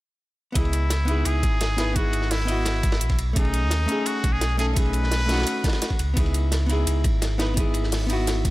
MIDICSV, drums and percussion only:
0, 0, Header, 1, 2, 480
1, 0, Start_track
1, 0, Key_signature, 4, "minor"
1, 0, Tempo, 350877
1, 758, Time_signature, 4, 2, 24, 8
1, 11633, End_track
2, 0, Start_track
2, 0, Title_t, "Drums"
2, 758, Note_on_c, 9, 36, 111
2, 758, Note_on_c, 9, 51, 82
2, 759, Note_on_c, 9, 42, 91
2, 889, Note_off_c, 9, 51, 0
2, 889, Note_on_c, 9, 51, 43
2, 894, Note_off_c, 9, 36, 0
2, 895, Note_off_c, 9, 42, 0
2, 999, Note_off_c, 9, 51, 0
2, 999, Note_on_c, 9, 42, 65
2, 999, Note_on_c, 9, 51, 70
2, 1135, Note_off_c, 9, 51, 0
2, 1136, Note_off_c, 9, 42, 0
2, 1234, Note_on_c, 9, 38, 110
2, 1238, Note_on_c, 9, 42, 91
2, 1239, Note_on_c, 9, 51, 88
2, 1371, Note_off_c, 9, 38, 0
2, 1375, Note_off_c, 9, 42, 0
2, 1375, Note_off_c, 9, 51, 0
2, 1473, Note_on_c, 9, 51, 58
2, 1477, Note_on_c, 9, 42, 64
2, 1610, Note_off_c, 9, 51, 0
2, 1614, Note_off_c, 9, 42, 0
2, 1712, Note_on_c, 9, 51, 79
2, 1718, Note_on_c, 9, 42, 89
2, 1848, Note_off_c, 9, 51, 0
2, 1855, Note_off_c, 9, 42, 0
2, 1957, Note_on_c, 9, 36, 102
2, 1958, Note_on_c, 9, 51, 65
2, 1959, Note_on_c, 9, 42, 64
2, 2094, Note_off_c, 9, 36, 0
2, 2095, Note_off_c, 9, 51, 0
2, 2096, Note_off_c, 9, 42, 0
2, 2197, Note_on_c, 9, 51, 83
2, 2198, Note_on_c, 9, 42, 90
2, 2207, Note_on_c, 9, 38, 115
2, 2334, Note_off_c, 9, 51, 0
2, 2335, Note_off_c, 9, 42, 0
2, 2343, Note_off_c, 9, 38, 0
2, 2432, Note_on_c, 9, 51, 77
2, 2438, Note_on_c, 9, 42, 65
2, 2439, Note_on_c, 9, 38, 100
2, 2569, Note_off_c, 9, 51, 0
2, 2575, Note_off_c, 9, 38, 0
2, 2575, Note_off_c, 9, 42, 0
2, 2677, Note_on_c, 9, 36, 112
2, 2679, Note_on_c, 9, 42, 88
2, 2681, Note_on_c, 9, 51, 58
2, 2814, Note_off_c, 9, 36, 0
2, 2816, Note_off_c, 9, 42, 0
2, 2818, Note_off_c, 9, 51, 0
2, 2912, Note_on_c, 9, 51, 62
2, 2919, Note_on_c, 9, 42, 64
2, 3035, Note_on_c, 9, 38, 47
2, 3048, Note_off_c, 9, 51, 0
2, 3056, Note_off_c, 9, 42, 0
2, 3159, Note_on_c, 9, 42, 90
2, 3162, Note_on_c, 9, 46, 72
2, 3167, Note_off_c, 9, 38, 0
2, 3167, Note_on_c, 9, 38, 105
2, 3281, Note_off_c, 9, 38, 0
2, 3281, Note_on_c, 9, 38, 39
2, 3296, Note_off_c, 9, 42, 0
2, 3299, Note_off_c, 9, 46, 0
2, 3399, Note_on_c, 9, 42, 65
2, 3402, Note_on_c, 9, 51, 64
2, 3418, Note_off_c, 9, 38, 0
2, 3535, Note_off_c, 9, 42, 0
2, 3539, Note_off_c, 9, 51, 0
2, 3630, Note_on_c, 9, 51, 78
2, 3631, Note_on_c, 9, 38, 105
2, 3638, Note_on_c, 9, 42, 90
2, 3767, Note_off_c, 9, 38, 0
2, 3767, Note_off_c, 9, 51, 0
2, 3775, Note_off_c, 9, 42, 0
2, 3872, Note_on_c, 9, 51, 62
2, 3876, Note_on_c, 9, 38, 30
2, 3877, Note_on_c, 9, 36, 103
2, 3878, Note_on_c, 9, 42, 64
2, 3994, Note_off_c, 9, 51, 0
2, 3994, Note_on_c, 9, 51, 69
2, 3999, Note_off_c, 9, 38, 0
2, 3999, Note_on_c, 9, 38, 101
2, 4014, Note_off_c, 9, 36, 0
2, 4015, Note_off_c, 9, 42, 0
2, 4117, Note_on_c, 9, 42, 92
2, 4131, Note_off_c, 9, 51, 0
2, 4136, Note_off_c, 9, 38, 0
2, 4233, Note_on_c, 9, 51, 55
2, 4238, Note_on_c, 9, 36, 62
2, 4245, Note_on_c, 9, 38, 29
2, 4254, Note_off_c, 9, 42, 0
2, 4358, Note_off_c, 9, 51, 0
2, 4358, Note_on_c, 9, 42, 66
2, 4358, Note_on_c, 9, 51, 67
2, 4375, Note_off_c, 9, 36, 0
2, 4382, Note_off_c, 9, 38, 0
2, 4495, Note_off_c, 9, 42, 0
2, 4495, Note_off_c, 9, 51, 0
2, 4598, Note_on_c, 9, 36, 113
2, 4598, Note_on_c, 9, 42, 87
2, 4605, Note_on_c, 9, 51, 87
2, 4715, Note_off_c, 9, 51, 0
2, 4715, Note_on_c, 9, 51, 40
2, 4735, Note_off_c, 9, 36, 0
2, 4735, Note_off_c, 9, 42, 0
2, 4835, Note_off_c, 9, 51, 0
2, 4835, Note_on_c, 9, 51, 60
2, 4839, Note_on_c, 9, 42, 66
2, 4971, Note_off_c, 9, 51, 0
2, 4976, Note_off_c, 9, 42, 0
2, 5070, Note_on_c, 9, 38, 104
2, 5078, Note_on_c, 9, 42, 90
2, 5082, Note_on_c, 9, 51, 89
2, 5207, Note_off_c, 9, 38, 0
2, 5215, Note_off_c, 9, 42, 0
2, 5219, Note_off_c, 9, 51, 0
2, 5306, Note_on_c, 9, 51, 58
2, 5318, Note_on_c, 9, 42, 63
2, 5442, Note_off_c, 9, 51, 0
2, 5455, Note_off_c, 9, 42, 0
2, 5550, Note_on_c, 9, 51, 87
2, 5559, Note_on_c, 9, 42, 88
2, 5687, Note_off_c, 9, 51, 0
2, 5696, Note_off_c, 9, 42, 0
2, 5796, Note_on_c, 9, 51, 63
2, 5798, Note_on_c, 9, 36, 103
2, 5800, Note_on_c, 9, 42, 63
2, 5933, Note_off_c, 9, 51, 0
2, 5935, Note_off_c, 9, 36, 0
2, 5936, Note_off_c, 9, 42, 0
2, 6034, Note_on_c, 9, 51, 78
2, 6037, Note_on_c, 9, 38, 117
2, 6039, Note_on_c, 9, 42, 93
2, 6171, Note_off_c, 9, 51, 0
2, 6173, Note_off_c, 9, 38, 0
2, 6175, Note_off_c, 9, 42, 0
2, 6271, Note_on_c, 9, 38, 33
2, 6279, Note_on_c, 9, 42, 64
2, 6291, Note_on_c, 9, 51, 56
2, 6408, Note_off_c, 9, 38, 0
2, 6416, Note_off_c, 9, 42, 0
2, 6428, Note_off_c, 9, 51, 0
2, 6515, Note_on_c, 9, 51, 88
2, 6517, Note_on_c, 9, 36, 113
2, 6520, Note_on_c, 9, 42, 85
2, 6644, Note_off_c, 9, 51, 0
2, 6644, Note_on_c, 9, 51, 37
2, 6654, Note_off_c, 9, 36, 0
2, 6657, Note_off_c, 9, 42, 0
2, 6745, Note_off_c, 9, 51, 0
2, 6745, Note_on_c, 9, 51, 70
2, 6759, Note_on_c, 9, 42, 61
2, 6882, Note_off_c, 9, 51, 0
2, 6885, Note_on_c, 9, 38, 48
2, 6896, Note_off_c, 9, 42, 0
2, 6995, Note_off_c, 9, 38, 0
2, 6995, Note_on_c, 9, 38, 107
2, 6999, Note_on_c, 9, 42, 86
2, 7000, Note_on_c, 9, 46, 76
2, 7104, Note_off_c, 9, 38, 0
2, 7104, Note_on_c, 9, 38, 38
2, 7136, Note_off_c, 9, 42, 0
2, 7137, Note_off_c, 9, 46, 0
2, 7233, Note_off_c, 9, 38, 0
2, 7233, Note_on_c, 9, 38, 88
2, 7235, Note_on_c, 9, 51, 64
2, 7239, Note_on_c, 9, 42, 61
2, 7293, Note_off_c, 9, 38, 0
2, 7293, Note_on_c, 9, 38, 85
2, 7297, Note_off_c, 9, 51, 0
2, 7297, Note_on_c, 9, 51, 60
2, 7351, Note_off_c, 9, 51, 0
2, 7351, Note_on_c, 9, 51, 60
2, 7364, Note_off_c, 9, 38, 0
2, 7364, Note_on_c, 9, 38, 84
2, 7375, Note_off_c, 9, 42, 0
2, 7419, Note_off_c, 9, 38, 0
2, 7419, Note_on_c, 9, 38, 80
2, 7429, Note_off_c, 9, 51, 0
2, 7429, Note_on_c, 9, 51, 60
2, 7478, Note_on_c, 9, 42, 87
2, 7485, Note_off_c, 9, 51, 0
2, 7485, Note_on_c, 9, 51, 92
2, 7555, Note_off_c, 9, 38, 0
2, 7615, Note_off_c, 9, 42, 0
2, 7621, Note_off_c, 9, 51, 0
2, 7716, Note_on_c, 9, 38, 78
2, 7717, Note_on_c, 9, 36, 104
2, 7719, Note_on_c, 9, 42, 60
2, 7727, Note_on_c, 9, 51, 68
2, 7772, Note_off_c, 9, 38, 0
2, 7772, Note_on_c, 9, 38, 80
2, 7788, Note_off_c, 9, 51, 0
2, 7788, Note_on_c, 9, 51, 65
2, 7835, Note_off_c, 9, 51, 0
2, 7835, Note_on_c, 9, 51, 71
2, 7842, Note_off_c, 9, 38, 0
2, 7842, Note_on_c, 9, 38, 95
2, 7854, Note_off_c, 9, 36, 0
2, 7856, Note_off_c, 9, 42, 0
2, 7958, Note_off_c, 9, 51, 0
2, 7958, Note_on_c, 9, 42, 87
2, 7958, Note_on_c, 9, 51, 82
2, 7964, Note_off_c, 9, 38, 0
2, 7964, Note_on_c, 9, 38, 102
2, 8078, Note_on_c, 9, 36, 60
2, 8095, Note_off_c, 9, 42, 0
2, 8095, Note_off_c, 9, 51, 0
2, 8100, Note_off_c, 9, 38, 0
2, 8198, Note_on_c, 9, 42, 64
2, 8199, Note_on_c, 9, 51, 68
2, 8215, Note_off_c, 9, 36, 0
2, 8335, Note_off_c, 9, 42, 0
2, 8336, Note_off_c, 9, 51, 0
2, 8437, Note_on_c, 9, 36, 108
2, 8438, Note_on_c, 9, 42, 83
2, 8438, Note_on_c, 9, 51, 88
2, 8562, Note_off_c, 9, 51, 0
2, 8562, Note_on_c, 9, 51, 42
2, 8574, Note_off_c, 9, 36, 0
2, 8575, Note_off_c, 9, 42, 0
2, 8677, Note_off_c, 9, 51, 0
2, 8677, Note_on_c, 9, 51, 63
2, 8678, Note_on_c, 9, 42, 62
2, 8814, Note_off_c, 9, 51, 0
2, 8815, Note_off_c, 9, 42, 0
2, 8914, Note_on_c, 9, 38, 98
2, 8919, Note_on_c, 9, 42, 85
2, 8923, Note_on_c, 9, 51, 79
2, 9051, Note_off_c, 9, 38, 0
2, 9056, Note_off_c, 9, 42, 0
2, 9060, Note_off_c, 9, 51, 0
2, 9159, Note_on_c, 9, 42, 60
2, 9169, Note_on_c, 9, 51, 62
2, 9296, Note_off_c, 9, 42, 0
2, 9306, Note_off_c, 9, 51, 0
2, 9398, Note_on_c, 9, 51, 81
2, 9399, Note_on_c, 9, 42, 82
2, 9535, Note_off_c, 9, 51, 0
2, 9536, Note_off_c, 9, 42, 0
2, 9632, Note_on_c, 9, 51, 68
2, 9637, Note_on_c, 9, 36, 101
2, 9639, Note_on_c, 9, 42, 58
2, 9768, Note_off_c, 9, 51, 0
2, 9774, Note_off_c, 9, 36, 0
2, 9775, Note_off_c, 9, 42, 0
2, 9873, Note_on_c, 9, 51, 78
2, 9876, Note_on_c, 9, 38, 100
2, 9878, Note_on_c, 9, 42, 85
2, 10010, Note_off_c, 9, 51, 0
2, 10013, Note_off_c, 9, 38, 0
2, 10015, Note_off_c, 9, 42, 0
2, 10113, Note_on_c, 9, 38, 102
2, 10118, Note_on_c, 9, 42, 61
2, 10119, Note_on_c, 9, 51, 68
2, 10250, Note_off_c, 9, 38, 0
2, 10255, Note_off_c, 9, 42, 0
2, 10255, Note_off_c, 9, 51, 0
2, 10357, Note_on_c, 9, 36, 108
2, 10358, Note_on_c, 9, 42, 84
2, 10363, Note_on_c, 9, 51, 59
2, 10494, Note_off_c, 9, 36, 0
2, 10494, Note_off_c, 9, 42, 0
2, 10500, Note_off_c, 9, 51, 0
2, 10586, Note_on_c, 9, 51, 67
2, 10597, Note_on_c, 9, 42, 62
2, 10720, Note_on_c, 9, 38, 49
2, 10723, Note_off_c, 9, 51, 0
2, 10734, Note_off_c, 9, 42, 0
2, 10831, Note_on_c, 9, 46, 73
2, 10838, Note_on_c, 9, 42, 83
2, 10844, Note_off_c, 9, 38, 0
2, 10844, Note_on_c, 9, 38, 105
2, 10960, Note_off_c, 9, 38, 0
2, 10960, Note_on_c, 9, 38, 43
2, 10968, Note_off_c, 9, 46, 0
2, 10975, Note_off_c, 9, 42, 0
2, 11077, Note_on_c, 9, 42, 61
2, 11078, Note_on_c, 9, 51, 67
2, 11097, Note_off_c, 9, 38, 0
2, 11214, Note_off_c, 9, 42, 0
2, 11215, Note_off_c, 9, 51, 0
2, 11318, Note_on_c, 9, 42, 84
2, 11324, Note_on_c, 9, 38, 95
2, 11328, Note_on_c, 9, 51, 69
2, 11455, Note_off_c, 9, 42, 0
2, 11461, Note_off_c, 9, 38, 0
2, 11465, Note_off_c, 9, 51, 0
2, 11548, Note_on_c, 9, 38, 31
2, 11557, Note_on_c, 9, 36, 98
2, 11559, Note_on_c, 9, 42, 60
2, 11561, Note_on_c, 9, 51, 55
2, 11633, Note_off_c, 9, 36, 0
2, 11633, Note_off_c, 9, 38, 0
2, 11633, Note_off_c, 9, 42, 0
2, 11633, Note_off_c, 9, 51, 0
2, 11633, End_track
0, 0, End_of_file